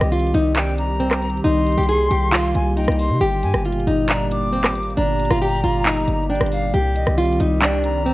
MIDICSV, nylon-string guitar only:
0, 0, Header, 1, 2, 480
1, 0, Start_track
1, 0, Tempo, 441176
1, 1571, Time_signature, 4, 2, 24, 8
1, 8853, End_track
2, 0, Start_track
2, 0, Title_t, "Nylon-string guitar"
2, 0, Program_c, 0, 24
2, 129, Note_on_c, 0, 65, 75
2, 351, Note_off_c, 0, 65, 0
2, 376, Note_on_c, 0, 63, 87
2, 595, Note_off_c, 0, 63, 0
2, 608, Note_on_c, 0, 62, 82
2, 1061, Note_off_c, 0, 62, 0
2, 1088, Note_on_c, 0, 60, 95
2, 1311, Note_off_c, 0, 60, 0
2, 1569, Note_on_c, 0, 63, 99
2, 1908, Note_off_c, 0, 63, 0
2, 1931, Note_on_c, 0, 67, 80
2, 2042, Note_off_c, 0, 67, 0
2, 2055, Note_on_c, 0, 68, 83
2, 2274, Note_off_c, 0, 68, 0
2, 2293, Note_on_c, 0, 67, 79
2, 2513, Note_off_c, 0, 67, 0
2, 2526, Note_on_c, 0, 65, 80
2, 2980, Note_off_c, 0, 65, 0
2, 3011, Note_on_c, 0, 63, 89
2, 3462, Note_off_c, 0, 63, 0
2, 3492, Note_on_c, 0, 67, 108
2, 3943, Note_off_c, 0, 67, 0
2, 3977, Note_on_c, 0, 65, 86
2, 4196, Note_off_c, 0, 65, 0
2, 4212, Note_on_c, 0, 63, 80
2, 4433, Note_off_c, 0, 63, 0
2, 4455, Note_on_c, 0, 62, 82
2, 4904, Note_off_c, 0, 62, 0
2, 4925, Note_on_c, 0, 60, 82
2, 5149, Note_off_c, 0, 60, 0
2, 5409, Note_on_c, 0, 62, 105
2, 5748, Note_off_c, 0, 62, 0
2, 5774, Note_on_c, 0, 65, 84
2, 5883, Note_off_c, 0, 65, 0
2, 5892, Note_on_c, 0, 67, 89
2, 6113, Note_off_c, 0, 67, 0
2, 6133, Note_on_c, 0, 65, 71
2, 6353, Note_off_c, 0, 65, 0
2, 6371, Note_on_c, 0, 63, 82
2, 6822, Note_off_c, 0, 63, 0
2, 6852, Note_on_c, 0, 62, 85
2, 7303, Note_off_c, 0, 62, 0
2, 7331, Note_on_c, 0, 67, 106
2, 7782, Note_off_c, 0, 67, 0
2, 7811, Note_on_c, 0, 65, 76
2, 8032, Note_off_c, 0, 65, 0
2, 8058, Note_on_c, 0, 63, 84
2, 8276, Note_off_c, 0, 63, 0
2, 8289, Note_on_c, 0, 62, 79
2, 8741, Note_off_c, 0, 62, 0
2, 8770, Note_on_c, 0, 60, 93
2, 8853, Note_off_c, 0, 60, 0
2, 8853, End_track
0, 0, End_of_file